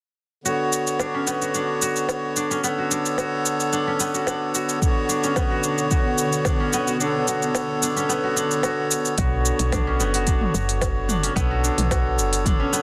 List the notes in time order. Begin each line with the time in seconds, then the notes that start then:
0.44 D3 B3 F#4 C#5, cabasa
0.73 cabasa
0.87 cabasa
1.00 D4, snare, cabasa
1.14 C#4
1.27 B3, cabasa
1.42 F#4, cabasa
1.54 D4, cabasa
1.82 F#4, cabasa
1.96 cabasa
2.09 snare, cabasa
2.36 D4, cabasa
2.51 C#4, cabasa
2.61 D3 B3 C#5, cabasa
2.65 A4
2.78 F#4
2.91 D4, cabasa
3.06 cabasa
3.18 F#4, snare, cabasa
3.46 cabasa
3.60 cabasa
3.73 D4, cabasa
3.87 C#4
4.00 B3, cabasa
4.14 F#4, cabasa
4.27 D4, snare, cabasa
4.55 F#4, cabasa
4.69 cabasa
4.80 D3 B3 C#5 F#5, kick, cabasa
4.84 F#4
5.09 D4, cabasa
5.24 C#4, cabasa
5.36 B3, kick, snare, cabasa
5.51 F#4
5.64 D4, cabasa
5.78 cabasa
5.91 F#4, kick, cabasa
6.18 cabasa
6.33 cabasa
6.45 D4, kick, snare, cabasa
6.60 C#4
6.73 B3, cabasa
6.87 F#4, cabasa
6.99 D3 B3 D4 C#5, cabasa
7.03 A4
7.28 F#4, cabasa
7.42 cabasa
7.55 snare, cabasa
7.82 D4, cabasa
7.97 C#4, cabasa
8.09 B3, cabasa
8.23 F#4
8.36 D4, cabasa
8.51 cabasa
8.63 F#4, snare, cabasa
8.91 cabasa
9.05 cabasa
9.16 B1 D3 B3 F#4 C#5, kick, open hi-hat, cabasa
9.45 cabasa
9.59 B1, open hi-hat, cabasa
9.72 D4, kick, snare, mid tom, open hi-hat, cabasa
9.87 C#4
10.00 F#1 B3, cabasa
10.14 F#4, open hi-hat, cabasa
10.27 D4, kick, open hi-hat, cabasa
10.41 mid tom
10.54 F#1 F#4, cabasa
10.69 open hi-hat, cabasa
10.81 kick, snare, open hi-hat, cabasa
11.09 D4, mid tom, cabasa
11.23 C#4, open hi-hat, cabasa
11.34 B1 D3 B3 C#5, kick, open hi-hat, cabasa
11.38 A4
11.51 F#4
11.64 D4, cabasa
11.78 B1, mid tom, open hi-hat, cabasa
11.91 F#4, kick, snare, open hi-hat, cabasa
12.18 F#1, cabasa
12.33 open hi-hat, cabasa
12.46 D4, kick, mid tom, open hi-hat, cabasa
12.60 C#4
12.73 B3, cabasa